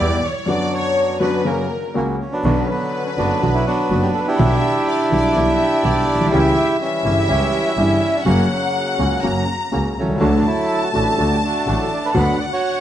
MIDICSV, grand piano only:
0, 0, Header, 1, 2, 480
1, 0, Start_track
1, 0, Key_signature, 2, "minor"
1, 0, Tempo, 490597
1, 470, Time_signature, 4, 2, 24, 8
1, 3353, Tempo, 485044
1, 12632, End_track
2, 0, Start_track
2, 0, Title_t, "Grand piano"
2, 0, Program_c, 0, 0
2, 0, Note_on_c, 0, 40, 80
2, 0, Note_on_c, 0, 52, 72
2, 0, Note_on_c, 0, 55, 59
2, 0, Note_on_c, 0, 59, 59
2, 0, Note_on_c, 0, 67, 69
2, 191, Note_off_c, 0, 40, 0
2, 191, Note_off_c, 0, 52, 0
2, 191, Note_off_c, 0, 55, 0
2, 192, Note_off_c, 0, 59, 0
2, 195, Note_off_c, 0, 67, 0
2, 449, Note_on_c, 0, 42, 70
2, 461, Note_on_c, 0, 50, 63
2, 464, Note_off_c, 0, 42, 0
2, 468, Note_on_c, 0, 54, 83
2, 472, Note_on_c, 0, 42, 81
2, 482, Note_on_c, 0, 59, 65
2, 489, Note_on_c, 0, 66, 79
2, 1147, Note_off_c, 0, 50, 0
2, 1153, Note_off_c, 0, 42, 0
2, 1153, Note_off_c, 0, 54, 0
2, 1158, Note_off_c, 0, 59, 0
2, 1162, Note_off_c, 0, 66, 0
2, 1176, Note_on_c, 0, 42, 81
2, 1177, Note_on_c, 0, 54, 81
2, 1178, Note_on_c, 0, 50, 61
2, 1181, Note_on_c, 0, 59, 62
2, 1181, Note_on_c, 0, 66, 75
2, 1385, Note_off_c, 0, 50, 0
2, 1386, Note_off_c, 0, 42, 0
2, 1386, Note_off_c, 0, 54, 0
2, 1387, Note_off_c, 0, 59, 0
2, 1387, Note_off_c, 0, 66, 0
2, 1411, Note_on_c, 0, 49, 68
2, 1416, Note_on_c, 0, 54, 72
2, 1418, Note_on_c, 0, 42, 71
2, 1421, Note_on_c, 0, 58, 59
2, 1422, Note_on_c, 0, 66, 70
2, 1623, Note_off_c, 0, 49, 0
2, 1626, Note_off_c, 0, 42, 0
2, 1627, Note_off_c, 0, 54, 0
2, 1628, Note_off_c, 0, 58, 0
2, 1629, Note_off_c, 0, 66, 0
2, 1902, Note_on_c, 0, 49, 69
2, 1908, Note_on_c, 0, 37, 68
2, 1908, Note_on_c, 0, 58, 54
2, 1910, Note_on_c, 0, 54, 54
2, 1912, Note_on_c, 0, 66, 62
2, 2115, Note_off_c, 0, 37, 0
2, 2115, Note_off_c, 0, 58, 0
2, 2116, Note_off_c, 0, 54, 0
2, 2117, Note_off_c, 0, 49, 0
2, 2117, Note_off_c, 0, 66, 0
2, 2394, Note_on_c, 0, 50, 74
2, 2395, Note_on_c, 0, 54, 72
2, 2398, Note_on_c, 0, 35, 88
2, 2398, Note_on_c, 0, 47, 86
2, 2398, Note_on_c, 0, 66, 82
2, 2399, Note_on_c, 0, 59, 67
2, 2597, Note_off_c, 0, 50, 0
2, 2597, Note_off_c, 0, 54, 0
2, 2599, Note_off_c, 0, 35, 0
2, 2599, Note_off_c, 0, 47, 0
2, 2599, Note_off_c, 0, 59, 0
2, 2599, Note_off_c, 0, 66, 0
2, 3112, Note_on_c, 0, 50, 50
2, 3112, Note_on_c, 0, 54, 47
2, 3114, Note_on_c, 0, 42, 53
2, 3114, Note_on_c, 0, 59, 43
2, 3117, Note_on_c, 0, 30, 60
2, 3117, Note_on_c, 0, 66, 56
2, 3313, Note_off_c, 0, 50, 0
2, 3313, Note_off_c, 0, 54, 0
2, 3314, Note_off_c, 0, 42, 0
2, 3314, Note_off_c, 0, 59, 0
2, 3315, Note_off_c, 0, 30, 0
2, 3315, Note_off_c, 0, 66, 0
2, 3349, Note_on_c, 0, 50, 45
2, 3350, Note_on_c, 0, 54, 43
2, 3351, Note_on_c, 0, 47, 55
2, 3352, Note_on_c, 0, 59, 42
2, 3355, Note_on_c, 0, 35, 57
2, 3355, Note_on_c, 0, 66, 51
2, 3552, Note_off_c, 0, 50, 0
2, 3552, Note_off_c, 0, 54, 0
2, 3553, Note_off_c, 0, 47, 0
2, 3553, Note_off_c, 0, 59, 0
2, 3555, Note_off_c, 0, 35, 0
2, 3555, Note_off_c, 0, 66, 0
2, 3827, Note_on_c, 0, 50, 46
2, 3828, Note_on_c, 0, 54, 42
2, 3831, Note_on_c, 0, 30, 53
2, 3831, Note_on_c, 0, 42, 49
2, 3834, Note_on_c, 0, 59, 41
2, 3835, Note_on_c, 0, 66, 46
2, 4029, Note_off_c, 0, 50, 0
2, 4030, Note_off_c, 0, 54, 0
2, 4031, Note_off_c, 0, 30, 0
2, 4031, Note_off_c, 0, 42, 0
2, 4033, Note_off_c, 0, 59, 0
2, 4033, Note_off_c, 0, 66, 0
2, 4304, Note_on_c, 0, 50, 75
2, 4305, Note_on_c, 0, 35, 93
2, 4306, Note_on_c, 0, 55, 65
2, 4309, Note_on_c, 0, 47, 94
2, 4309, Note_on_c, 0, 59, 66
2, 4311, Note_on_c, 0, 64, 87
2, 4506, Note_off_c, 0, 35, 0
2, 4506, Note_off_c, 0, 50, 0
2, 4507, Note_off_c, 0, 55, 0
2, 4508, Note_off_c, 0, 47, 0
2, 4508, Note_off_c, 0, 59, 0
2, 4510, Note_off_c, 0, 64, 0
2, 5020, Note_on_c, 0, 50, 50
2, 5022, Note_on_c, 0, 55, 45
2, 5022, Note_on_c, 0, 59, 45
2, 5023, Note_on_c, 0, 35, 58
2, 5025, Note_on_c, 0, 47, 59
2, 5026, Note_on_c, 0, 64, 57
2, 5222, Note_off_c, 0, 50, 0
2, 5223, Note_off_c, 0, 35, 0
2, 5223, Note_off_c, 0, 55, 0
2, 5223, Note_off_c, 0, 59, 0
2, 5225, Note_off_c, 0, 47, 0
2, 5225, Note_off_c, 0, 64, 0
2, 5262, Note_on_c, 0, 50, 49
2, 5266, Note_on_c, 0, 59, 43
2, 5267, Note_on_c, 0, 55, 47
2, 5268, Note_on_c, 0, 35, 60
2, 5268, Note_on_c, 0, 47, 61
2, 5271, Note_on_c, 0, 64, 55
2, 5462, Note_off_c, 0, 50, 0
2, 5465, Note_off_c, 0, 55, 0
2, 5465, Note_off_c, 0, 59, 0
2, 5466, Note_off_c, 0, 35, 0
2, 5466, Note_off_c, 0, 47, 0
2, 5467, Note_off_c, 0, 64, 0
2, 5732, Note_on_c, 0, 50, 46
2, 5736, Note_on_c, 0, 35, 55
2, 5737, Note_on_c, 0, 59, 44
2, 5738, Note_on_c, 0, 47, 53
2, 5738, Note_on_c, 0, 55, 43
2, 5739, Note_on_c, 0, 64, 51
2, 5935, Note_off_c, 0, 50, 0
2, 5937, Note_off_c, 0, 35, 0
2, 5938, Note_off_c, 0, 47, 0
2, 5938, Note_off_c, 0, 55, 0
2, 5938, Note_off_c, 0, 59, 0
2, 5939, Note_off_c, 0, 64, 0
2, 6046, Note_on_c, 0, 34, 52
2, 6101, Note_off_c, 0, 34, 0
2, 6102, Note_on_c, 0, 35, 59
2, 6157, Note_on_c, 0, 36, 74
2, 6159, Note_off_c, 0, 35, 0
2, 6209, Note_on_c, 0, 49, 86
2, 6213, Note_on_c, 0, 52, 70
2, 6216, Note_off_c, 0, 36, 0
2, 6216, Note_on_c, 0, 55, 73
2, 6217, Note_on_c, 0, 37, 89
2, 6218, Note_on_c, 0, 64, 93
2, 6415, Note_off_c, 0, 52, 0
2, 6416, Note_off_c, 0, 49, 0
2, 6417, Note_off_c, 0, 55, 0
2, 6418, Note_off_c, 0, 37, 0
2, 6418, Note_off_c, 0, 64, 0
2, 6931, Note_on_c, 0, 52, 48
2, 6932, Note_on_c, 0, 49, 51
2, 6933, Note_on_c, 0, 31, 59
2, 6936, Note_on_c, 0, 43, 61
2, 6936, Note_on_c, 0, 64, 61
2, 6937, Note_on_c, 0, 55, 47
2, 7133, Note_off_c, 0, 52, 0
2, 7134, Note_off_c, 0, 49, 0
2, 7135, Note_off_c, 0, 31, 0
2, 7136, Note_off_c, 0, 43, 0
2, 7136, Note_off_c, 0, 55, 0
2, 7136, Note_off_c, 0, 64, 0
2, 7168, Note_on_c, 0, 37, 59
2, 7168, Note_on_c, 0, 49, 57
2, 7169, Note_on_c, 0, 55, 43
2, 7170, Note_on_c, 0, 52, 44
2, 7172, Note_on_c, 0, 64, 57
2, 7372, Note_off_c, 0, 37, 0
2, 7372, Note_off_c, 0, 49, 0
2, 7372, Note_off_c, 0, 55, 0
2, 7373, Note_off_c, 0, 52, 0
2, 7374, Note_off_c, 0, 64, 0
2, 7651, Note_on_c, 0, 49, 44
2, 7655, Note_on_c, 0, 31, 56
2, 7656, Note_on_c, 0, 43, 56
2, 7656, Note_on_c, 0, 52, 44
2, 7658, Note_on_c, 0, 55, 41
2, 7658, Note_on_c, 0, 64, 52
2, 7852, Note_off_c, 0, 49, 0
2, 7854, Note_off_c, 0, 31, 0
2, 7855, Note_off_c, 0, 43, 0
2, 7855, Note_off_c, 0, 52, 0
2, 7856, Note_off_c, 0, 55, 0
2, 7856, Note_off_c, 0, 64, 0
2, 8134, Note_on_c, 0, 49, 73
2, 8135, Note_on_c, 0, 54, 91
2, 8136, Note_on_c, 0, 42, 87
2, 8140, Note_on_c, 0, 58, 66
2, 8141, Note_on_c, 0, 66, 81
2, 8335, Note_off_c, 0, 49, 0
2, 8336, Note_off_c, 0, 42, 0
2, 8336, Note_off_c, 0, 54, 0
2, 8338, Note_off_c, 0, 58, 0
2, 8338, Note_off_c, 0, 66, 0
2, 8852, Note_on_c, 0, 49, 55
2, 8855, Note_on_c, 0, 54, 44
2, 8856, Note_on_c, 0, 58, 46
2, 8859, Note_on_c, 0, 37, 56
2, 8861, Note_on_c, 0, 66, 55
2, 9057, Note_off_c, 0, 54, 0
2, 9058, Note_off_c, 0, 49, 0
2, 9058, Note_off_c, 0, 58, 0
2, 9059, Note_off_c, 0, 37, 0
2, 9060, Note_off_c, 0, 66, 0
2, 9095, Note_on_c, 0, 49, 50
2, 9097, Note_on_c, 0, 42, 54
2, 9097, Note_on_c, 0, 54, 55
2, 9099, Note_on_c, 0, 58, 43
2, 9101, Note_on_c, 0, 66, 52
2, 9298, Note_off_c, 0, 49, 0
2, 9299, Note_off_c, 0, 42, 0
2, 9299, Note_off_c, 0, 54, 0
2, 9300, Note_off_c, 0, 58, 0
2, 9301, Note_off_c, 0, 66, 0
2, 9579, Note_on_c, 0, 58, 40
2, 9581, Note_on_c, 0, 37, 50
2, 9581, Note_on_c, 0, 49, 48
2, 9582, Note_on_c, 0, 54, 41
2, 9586, Note_on_c, 0, 66, 47
2, 9783, Note_off_c, 0, 58, 0
2, 9784, Note_off_c, 0, 37, 0
2, 9784, Note_off_c, 0, 49, 0
2, 9785, Note_off_c, 0, 54, 0
2, 9786, Note_off_c, 0, 66, 0
2, 9880, Note_on_c, 0, 35, 50
2, 9941, Note_off_c, 0, 35, 0
2, 9943, Note_on_c, 0, 36, 50
2, 9999, Note_on_c, 0, 37, 66
2, 10003, Note_off_c, 0, 36, 0
2, 10058, Note_on_c, 0, 50, 91
2, 10060, Note_on_c, 0, 54, 68
2, 10061, Note_off_c, 0, 37, 0
2, 10062, Note_on_c, 0, 57, 67
2, 10063, Note_on_c, 0, 38, 88
2, 10063, Note_on_c, 0, 66, 78
2, 10264, Note_off_c, 0, 50, 0
2, 10264, Note_off_c, 0, 54, 0
2, 10265, Note_off_c, 0, 38, 0
2, 10265, Note_off_c, 0, 57, 0
2, 10266, Note_off_c, 0, 66, 0
2, 10782, Note_on_c, 0, 50, 50
2, 10783, Note_on_c, 0, 54, 44
2, 10783, Note_on_c, 0, 57, 43
2, 10785, Note_on_c, 0, 66, 55
2, 10786, Note_on_c, 0, 33, 56
2, 10787, Note_on_c, 0, 45, 53
2, 10988, Note_off_c, 0, 50, 0
2, 10988, Note_off_c, 0, 54, 0
2, 10988, Note_off_c, 0, 57, 0
2, 10989, Note_off_c, 0, 66, 0
2, 10990, Note_off_c, 0, 33, 0
2, 10990, Note_off_c, 0, 45, 0
2, 11023, Note_on_c, 0, 50, 59
2, 11023, Note_on_c, 0, 54, 44
2, 11027, Note_on_c, 0, 38, 58
2, 11027, Note_on_c, 0, 57, 45
2, 11030, Note_on_c, 0, 66, 52
2, 11229, Note_off_c, 0, 50, 0
2, 11229, Note_off_c, 0, 54, 0
2, 11230, Note_off_c, 0, 57, 0
2, 11231, Note_off_c, 0, 38, 0
2, 11232, Note_off_c, 0, 66, 0
2, 11503, Note_on_c, 0, 50, 46
2, 11505, Note_on_c, 0, 45, 55
2, 11505, Note_on_c, 0, 57, 42
2, 11506, Note_on_c, 0, 54, 39
2, 11507, Note_on_c, 0, 33, 55
2, 11510, Note_on_c, 0, 66, 47
2, 11709, Note_off_c, 0, 50, 0
2, 11710, Note_off_c, 0, 45, 0
2, 11710, Note_off_c, 0, 54, 0
2, 11710, Note_off_c, 0, 57, 0
2, 11711, Note_off_c, 0, 33, 0
2, 11713, Note_off_c, 0, 66, 0
2, 11978, Note_on_c, 0, 50, 87
2, 11980, Note_on_c, 0, 38, 87
2, 11980, Note_on_c, 0, 54, 71
2, 11985, Note_on_c, 0, 59, 67
2, 11985, Note_on_c, 0, 66, 86
2, 12187, Note_off_c, 0, 38, 0
2, 12187, Note_off_c, 0, 54, 0
2, 12189, Note_off_c, 0, 50, 0
2, 12190, Note_off_c, 0, 59, 0
2, 12190, Note_off_c, 0, 66, 0
2, 12632, End_track
0, 0, End_of_file